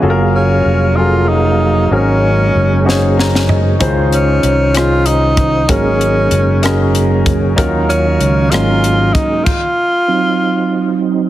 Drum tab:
CC |------------|------------|------------|------------|
HH |------------|------------|x-x-x-x-x-x-|x-x-x-x-x-x-|
SD |------------|------o-oo--|------r-----|------r-----|
FT |------------|----------o-|------------|------------|
BD |------------|------------|o---------o-|o---------o-|

CC |------------|x-----------|
HH |x-x-x-x-x-x-|------------|
SD |------r-----|------------|
FT |------------|------------|
BD |o---------o-|o-----------|